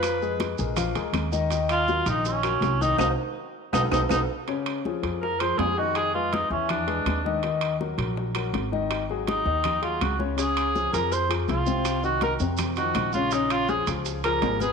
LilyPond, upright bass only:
\new Staff \with { instrumentName = "Upright bass" } { \clef bass \time 4/4 \key bes \minor \tempo 4 = 163 f,4. bes,,4 d,8 ees,4~ | ees,4. bes,,4. c,4 | c,8 r4. b,,8 b,,8 b,,8 r8 | r4. f,4. f,4~ |
f,4. e,4. ees,4~ | ees,4. bes,,4. aes,,4~ | aes,,4. ees,4. des,4~ | des,4. f,4. c,4~ |
c,4. f,4. bes,,4~ | bes,,4. des,4. aes,,4 | }